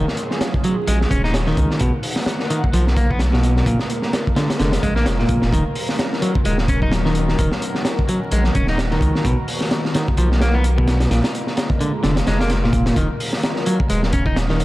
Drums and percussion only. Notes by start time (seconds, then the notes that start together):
0.08 snare
0.17 closed hi-hat
0.31 snare
0.41 snare, closed hi-hat
0.54 kick
0.64 closed hi-hat
0.87 closed hi-hat
1.01 snare
1.11 kick, closed hi-hat
1.24 snare
1.34 snare, closed hi-hat
1.47 snare
1.57 kick, closed hi-hat
1.71 snare
1.79 kick, closed hi-hat
2.03 open hi-hat
2.16 snare
2.26 snare, closed hi-hat
2.40 snare
2.50 closed hi-hat
2.64 kick
2.73 closed hi-hat
2.87 snare
2.96 kick, closed hi-hat
3.11 kick
3.19 snare, closed hi-hat
3.33 snare
3.43 closed hi-hat
3.57 snare
3.66 kick, closed hi-hat
3.79 snare
3.90 closed hi-hat
4.02 snare
4.13 snare, closed hi-hat
4.27 kick
4.36 snare, closed hi-hat
4.50 snare, closed hi-hat
4.59 snare, closed hi-hat
4.72 snare, closed hi-hat
4.83 kick, closed hi-hat
4.96 snare
5.06 snare, closed hi-hat
5.19 snare
5.29 kick, closed hi-hat
5.42 snare
5.53 kick, closed hi-hat
5.75 open hi-hat
5.89 snare
5.99 snare, closed hi-hat
6.13 snare
6.22 closed hi-hat
6.35 kick
6.45 closed hi-hat
6.58 snare
6.68 kick, closed hi-hat
6.82 kick
6.92 snare, closed hi-hat
7.05 snare
7.15 closed hi-hat
7.28 snare
7.39 kick, closed hi-hat
7.52 snare
7.62 closed hi-hat
7.75 snare
7.85 snare, closed hi-hat
7.99 kick
8.08 closed hi-hat
8.31 closed hi-hat
8.44 snare
8.55 kick, closed hi-hat
8.67 snare
8.78 snare, closed hi-hat
8.91 snare
9.01 kick, closed hi-hat
9.15 snare
9.25 kick, closed hi-hat
9.48 open hi-hat
9.61 snare
9.71 snare, closed hi-hat
9.85 snare
9.94 snare, closed hi-hat
10.08 kick
10.17 closed hi-hat
10.32 snare
10.41 snare, closed hi-hat
10.64 closed hi-hat
10.78 kick
10.88 snare, closed hi-hat
11.00 snare, closed hi-hat
11.11 snare, closed hi-hat
11.24 snare, closed hi-hat
11.35 closed hi-hat
11.47 snare
11.57 snare, closed hi-hat
11.70 kick
11.80 closed hi-hat
12.03 snare, closed hi-hat
12.16 snare, closed hi-hat
12.27 snare, closed hi-hat
12.41 snare, closed hi-hat
12.50 snare, closed hi-hat
12.64 snare
12.73 kick, closed hi-hat
12.86 snare, closed hi-hat
12.96 kick, closed hi-hat
13.20 open hi-hat
13.33 snare
13.43 snare, closed hi-hat
13.56 snare
13.66 closed hi-hat
13.80 kick
13.89 closed hi-hat
14.03 snare
14.13 kick, closed hi-hat
14.26 kick
14.36 snare, closed hi-hat
14.49 snare
14.60 closed hi-hat